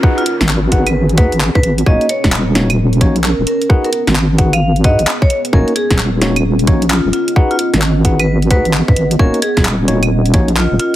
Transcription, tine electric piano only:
X:1
M:4/4
L:1/16
Q:"Swing 16ths" 1/4=131
K:Ebm
V:1 name="Tine electric piano"
[EGAcg]2 z4 [EGAcg] z3 [EGAcg] z4 z | [B,DEGd]2 z4 [B,DEGd] z3 [B,DEGd] z4 z | [EGAcg]2 z4 [EGAcg] z3 [EGAcg] z4 z | [B,DEGd]2 z4 [B,DEGd] z3 [B,DEGd] z4 z |
[EGAcg]2 z4 [EGAcg] z3 [EGAcg] z4 z | [B,DEGd]2 z4 [B,DEGd] z3 [B,DEGd] z4 z |]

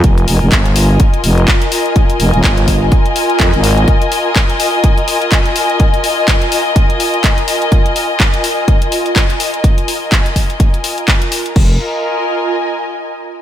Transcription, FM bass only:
X:1
M:4/4
L:1/16
Q:"Swing 16ths" 1/4=125
K:Fm
V:1 name="FM bass" clef=bass
F,,,2 F,,, F,,, G,,,4 z2 F,,,2 z4 | z2 F,,, E,,, G,,,4 z4 F,, A,,,3 | z16 | z16 |
z16 | z16 | F,,,2 z12 z2 |]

